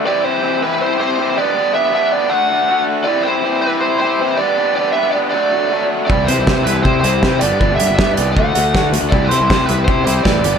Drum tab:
HH |--------|--------|--------|--------|
SD |--------|--------|--------|--------|
BD |--------|--------|--------|--------|

HH |-x-x-x-x|-x-x-x-x|-x-x-x-x|
SD |--o---o-|--o---o-|--o---o-|
BD |o-o-o-o-|o-o-o-o-|o-o-o-o-|